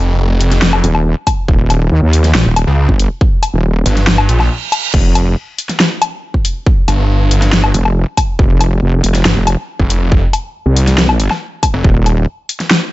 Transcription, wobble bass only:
0.84 1.14 D#1 medium
1.48 1.90 D#1 loud
1.92 2.01 D#2 loud
2.02 2.33 D#2 loud
2.46 2.66 D#1 loud
2.89 3.09 G1 loud
3.54 3.84 D#1 loud
4.94 5.35 F1 loud
7.74 8.05 F1 medium
8.39 8.81 F1 loud
8.82 9.02 F1 loud
9.04 9.24 F1 loud
9.36 9.56 F1 loud
10.66 11.29 C2 loud
11.84 12.26 D#1 loud

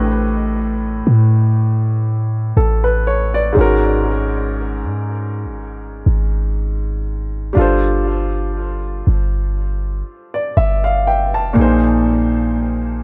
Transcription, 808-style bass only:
0.00 1.03 A1 loud
1.07 2.53 A2 loud
2.57 3.53 A1 loud
3.57 4.86 G#1 loud
4.84 5.47 G#2 loud
5.45 6.04 G#1 loud
6.06 7.52 G#1 loud
7.57 9.03 G1 loud
9.07 10.03 G1 loud
10.57 11.35 G1 loud
11.34 11.56 F1 loud
11.57 13.03 A#1 loud

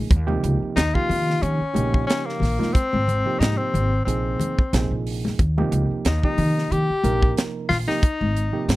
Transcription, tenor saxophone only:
0.76 0.96 D#4 medium
0.95 1.44 F4 loud
1.42 2.06 C#4 medium
2.07 2.27 C#4 medium
2.26 2.75 A#3 medium
2.73 3.40 C4 medium
3.39 3.59 D#4 medium
3.57 4.05 C4 medium
4.05 5.01 C4 medium
6.06 6.22 D#4 medium
6.24 6.73 D#4 medium
6.72 7.37 G4 medium
7.69 7.77 F4 medium
7.88 8.76 D#4 loud

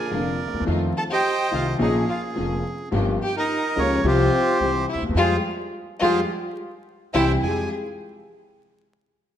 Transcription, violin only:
0.97 1.03 A4 medium
1.10 1.49 G4 medium
1.52 1.65 F4 medium
1.81 1.93 D#4 medium
2.09 2.21 F4 medium
3.23 3.34 G4 medium
3.37 3.75 D#4 medium
3.79 4.04 C#4 medium
4.06 4.85 C4 medium
4.89 5.02 E4 medium
5.17 5.35 F4 loud
6.00 6.18 F4 loud
7.14 7.32 E4 medium
7.43 7.69 G#4 medium

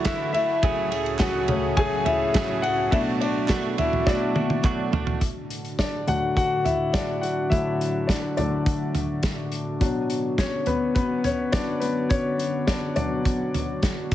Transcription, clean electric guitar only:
0.05 0.34 D3 medium
0.05 0.34 E3 medium
0.05 0.34 A3 medium
0.05 0.34 E4 loud
0.05 0.33 F#4 loud
0.34 0.62 A3 medium
0.34 0.63 E4 medium
0.34 0.63 F#4 medium
0.62 0.91 C#3 medium
0.62 0.92 F#3 medium
0.62 0.92 A3 medium
0.62 0.91 C#4 medium
0.62 0.90 G#4 loud
0.91 1.20 A3 medium
0.91 1.21 C#4 medium
0.91 1.20 G#4 medium
1.20 1.49 C#3 medium
1.20 1.49 F#3 medium
1.20 1.49 A3 medium
1.20 1.49 C#4 medium
1.20 1.48 G#4 medium
1.49 1.77 A3 medium
1.49 1.78 C#4 medium
1.49 1.78 G#4 medium
1.77 2.06 F#3 medium
1.77 2.06 A3 medium
1.77 2.06 C#4 medium
1.77 2.04 G#4 medium
2.05 2.35 A3 medium
2.05 2.35 C#4 medium
2.05 2.34 G#4 medium
2.35 2.63 C#3 medium
2.35 2.64 F#3 loud
2.35 2.64 A3 medium
2.35 2.63 C#4 loud
2.35 2.61 G#4 loud
2.62 2.92 A3 soft
2.62 2.92 C#4 medium
2.62 2.91 G#4 medium
2.92 3.20 B2 medium
2.92 3.21 F#3 medium
2.92 3.21 A3 medium
2.92 3.21 D4 loud
2.92 3.19 F#4 medium
3.20 3.49 A3 medium
3.20 3.49 D4 medium
3.20 3.49 F#4 medium
3.49 3.78 B2 medium
3.49 3.78 F#3 medium
3.49 3.78 A3 loud
3.49 3.78 D4 medium
3.49 3.77 F#4 medium
3.78 4.06 A3 soft
3.78 4.07 D4 medium
3.78 4.06 F#4 medium
4.06 4.35 F#3 medium
4.06 4.36 A3 medium
4.06 4.35 D4 medium
4.06 4.34 F#4 medium
4.35 4.63 A3 medium
4.35 4.64 D4 medium
4.35 4.64 F#4 medium
4.63 4.92 B2 medium
4.63 4.93 F#3 medium
4.63 4.93 A3 medium
4.63 4.92 D4 loud
4.63 4.91 F#4 loud
4.92 5.22 A3 medium
4.92 5.22 D4 medium
4.92 5.21 F#4 medium

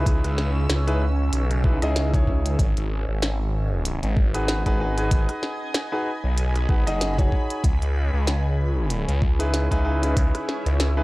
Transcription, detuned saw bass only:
0.06 0.21 C#2 loud
0.24 0.67 C#2 loud
0.69 1.30 C#2 loud
1.32 1.79 B1 loud
1.82 2.57 C#2 loud
2.59 2.74 G#1 medium
2.77 3.05 G#1 loud
3.08 4.00 G#1 loud
4.03 4.63 G#1 loud
4.66 5.09 G#1 loud
5.11 5.26 G#1 medium
6.24 6.67 B1 medium
6.69 6.84 G#1 loud
6.87 7.30 F#1 loud
7.64 7.79 C#2 medium
7.82 8.10 C#2 medium
8.13 9.05 C#2 loud
9.08 9.68 C#2 loud
9.71 10.14 C#2 loud
10.17 10.32 C#2 medium
10.66 11.03 C#2 loud

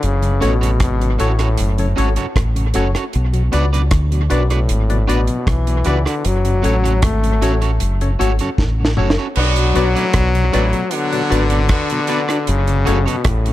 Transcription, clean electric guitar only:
0.41 0.53 C#4 medium
0.41 0.53 F#4 medium
0.41 0.53 A4 medium
0.41 0.53 C#5 medium
0.61 0.70 C#4 soft
0.61 0.70 F#4 medium
0.61 0.70 A4 medium
0.61 0.70 C#5 medium
1.19 1.31 C#4 medium
1.19 1.31 F#4 medium
1.19 1.31 A4 medium
1.19 1.31 C#5 medium
1.39 1.48 C#4 soft
1.39 1.48 F#4 medium
1.39 1.48 A4 medium
1.39 1.47 C#5 medium
1.96 2.08 C#4 medium
1.96 2.08 F#4 medium
1.96 2.09 A4 medium
1.96 2.09 C#5 medium
2.17 2.26 C#4 soft
2.17 2.26 F#4 medium
2.17 2.25 A4 medium
2.17 2.25 C#5 medium
2.75 2.86 C#4 medium
2.75 2.87 F#4 medium
2.75 2.87 A4 medium
2.75 2.87 C#5 medium
2.95 3.04 C#4 soft
2.95 3.04 F#4 soft
2.95 3.04 A4 soft
2.95 3.03 C#5 medium
3.52 3.64 D4 medium
3.52 3.64 F#4 medium
3.52 3.64 B4 medium
3.52 3.65 D5 loud
3.73 3.82 D4 medium
3.73 3.82 F#4 soft
3.73 3.81 B4 medium
3.73 3.81 D5 medium
4.30 4.42 D4 medium
4.30 4.42 F#4 medium
4.30 4.42 B4 medium
4.30 4.42 D5 medium
4.50 4.59 D4 soft
4.50 4.59 F#4 medium
4.50 4.59 B4 medium
4.50 4.59 D5 medium
5.08 5.20 D4 medium
5.08 5.20 F#4 medium
5.08 5.20 B4 medium
5.08 5.20 D5 medium
5.85 5.97 D4 medium
5.85 5.98 F#4 medium
5.85 5.98 B4 medium
5.85 5.98 D5 medium
6.05 6.15 D4 medium
6.05 6.14 F#4 medium
6.05 6.14 B4 medium
6.05 6.14 D5 medium
6.62 6.75 C#4 medium
6.62 6.75 F#4 medium
6.62 6.75 A4 medium
6.62 6.76 C#5 medium
6.84 6.93 C#4 soft
6.84 6.93 F#4 medium
6.84 6.92 A4 medium
6.84 6.92 C#5 medium
7.42 7.53 C#4 medium
7.42 7.53 F#4 medium
7.42 7.54 A4 medium
7.42 7.54 C#5 medium
7.62 7.71 C#4 soft
7.62 7.70 F#4 medium
7.62 7.70 A4 medium
7.62 7.70 C#5 medium
8.19 8.31 C#4 medium
8.19 8.31 F#4 medium
8.19 8.31 A4 medium
8.19 8.32 C#5 medium
8.41 8.49 C#4 soft
8.41 8.49 F#4 medium
8.41 8.49 A4 medium
8.41 8.49 C#5 medium
8.97 9.09 C#4 medium
8.97 9.09 F#4 medium
8.97 9.10 A4 medium
8.97 9.10 C#5 loud
9.18 9.27 C#4 medium
9.18 9.27 F#4 medium
9.18 9.27 A4 medium
9.18 9.26 C#5 medium
9.75 9.87 D4 medium
9.75 9.87 F#4 medium
9.75 9.87 B4 medium
9.75 9.87 D5 loud
9.95 10.04 D4 medium
9.95 10.04 F#4 medium
9.95 10.04 B4 medium
9.95 10.04 D5 medium
10.53 10.65 D4 medium
10.53 10.65 F#4 medium
10.53 10.65 B4 medium
10.53 10.65 D5 medium
11.30 11.42 D4 medium
11.30 11.42 F#4 loud
11.30 11.43 B4 medium
11.30 11.43 D5 loud
11.50 11.59 D4 soft
11.50 11.59 F#4 medium
11.50 11.59 B4 medium
11.50 11.59 D5 medium
12.08 12.20 D4 medium
12.08 12.21 F#4 medium
12.08 12.21 B4 medium
12.08 12.21 D5 loud
12.28 12.37 D4 medium
12.28 12.37 F#4 medium
12.28 12.37 B4 medium
12.28 12.37 D5 medium
12.85 12.98 C#4 loud
12.85 12.98 F#4 medium
12.85 12.98 A4 loud
12.85 12.98 C#5 loud
13.06 13.15 C#4 medium
13.06 13.15 F#4 medium
13.06 13.15 A4 medium
13.06 13.15 C#5 medium

